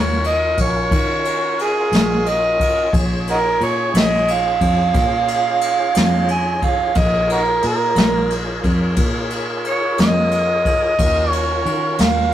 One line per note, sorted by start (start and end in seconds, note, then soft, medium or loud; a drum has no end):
0.00 0.53 D#2 medium
0.00 2.90 C#4 medium
0.00 2.90 F4 medium
0.00 2.89 F#4 medium
0.00 2.90 A#4 medium
0.00 0.28 C#5 medium
0.24 0.58 D#5 medium
0.24 ride medium
0.58 0.89 A#1 medium
0.58 1.57 C#5 medium
0.58 kick medium
0.58 ride medium
0.91 1.88 D#3 medium
0.91 kick loud
0.91 ride medium
1.25 ride medium
1.59 2.30 G#4 medium
1.59 ride medium
1.92 2.89 A#1 medium
1.92 snare loud
1.92 ride medium
2.26 2.93 D#5 medium
2.26 ride medium
2.60 kick medium
2.60 ride medium
2.92 3.57 A#1 medium
2.92 6.92 C#4 medium
2.92 6.92 F4 medium
2.92 6.92 G#4 medium
2.92 6.92 C#5 medium
2.92 kick loud
2.92 ride medium
3.27 3.37 D#4 medium
3.27 3.37 F#4 medium
3.27 3.61 A#4 medium
3.27 ride medium
3.61 3.92 A#2 medium
3.61 4.00 C#5 medium
3.61 ride medium
3.94 4.57 A#1 medium
3.94 snare loud
3.94 ride medium
3.98 4.33 D#5 medium
4.28 6.27 F5 medium
4.28 ride medium
4.61 4.92 F2 medium
4.61 kick medium
4.61 ride medium
4.94 5.92 A#2 loud
4.94 kick loud
4.94 snare soft
4.94 ride medium
5.28 ride medium
5.61 ride medium
5.95 6.93 F2 medium
5.95 snare medium
5.95 ride medium
6.28 6.66 G#5 medium
6.28 ride medium
6.62 7.00 F5 medium
6.62 kick medium
6.62 ride medium
6.95 7.59 A#1 medium
6.95 10.95 F4 medium
6.95 10.95 G#4 medium
6.95 10.95 A#4 medium
6.95 10.95 C#5 medium
6.95 7.30 D#5 medium
6.95 kick loud
6.95 ride medium
7.30 7.40 D#4 medium
7.30 7.39 F#4 medium
7.30 7.64 A#4 medium
7.30 ride medium
7.62 7.94 A#2 medium
7.62 ride medium
7.66 8.30 A#4 medium
7.96 8.60 A#1 medium
7.96 snare loud
7.96 ride medium
8.30 ride medium
8.64 8.95 F2 medium
8.64 kick medium
8.64 ride soft
8.96 9.94 A#2 medium
8.96 kick loud
8.96 ride medium
9.30 ride medium
9.64 9.99 C#5 medium
9.64 ride medium
9.98 10.96 F2 medium
9.98 11.29 D#5 medium
9.98 snare loud
9.98 ride medium
10.31 ride medium
10.65 kick medium
10.65 ride medium
10.99 11.62 D#2 medium
10.99 12.34 C#4 medium
10.99 12.34 F4 medium
10.99 12.34 F#4 medium
10.99 12.34 A#4 medium
10.99 kick loud
10.99 ride medium
11.29 12.03 C#5 medium
11.29 ride medium
11.66 11.97 D#3 medium
11.66 ride soft
11.98 12.34 D#2 medium
11.98 12.34 F5 medium
11.98 snare loud
11.98 ride medium